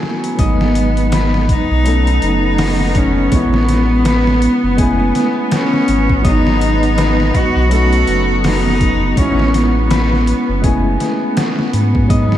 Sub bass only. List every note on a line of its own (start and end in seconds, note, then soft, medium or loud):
0.39 1.55 G#1 medium
1.71 2.19 B1 loud
2.23 3.29 F#1 medium
3.32 4.48 A1 medium
4.64 5.12 F#1 loud
5.89 7.32 G#1 medium
7.56 8.05 B1 loud
8.08 9.14 F#1 medium
9.18 10.33 A1 medium
10.49 10.97 F#1 loud
11.74 12.38 G#2 medium